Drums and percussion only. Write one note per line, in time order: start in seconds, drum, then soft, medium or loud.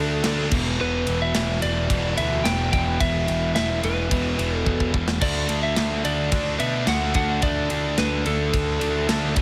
0.24 snare loud
0.24 ride loud
0.51 kick loud
0.51 crash loud
1.07 ride medium
1.35 snare loud
1.35 ride loud
1.62 ride medium
1.90 kick loud
1.90 ride loud
2.18 ride medium
2.45 snare loud
2.45 ride loud
2.73 kick medium
2.73 ride medium
3.00 kick loud
3.00 ride loud
3.28 ride medium
3.56 snare loud
3.56 ride medium
3.83 ride medium
4.11 kick medium
4.11 ride loud
4.39 ride medium
4.66 kick medium
4.80 kick medium
4.94 kick medium
5.08 snare loud
5.21 kick loud
5.21 crash loud
5.49 ride medium
5.76 snare loud
5.76 ride loud
6.05 ride medium
6.32 kick loud
6.32 ride loud
6.60 ride medium
6.87 snare loud
6.87 ride loud
7.14 kick medium
7.14 ride medium
7.42 kick loud
7.42 ride medium
7.70 ride medium
7.98 snare loud
7.98 ride loud
8.26 ride medium
8.54 kick medium
8.54 ride loud
8.81 ride medium
9.09 snare loud
9.09 ride loud
9.36 kick loud
9.36 ride medium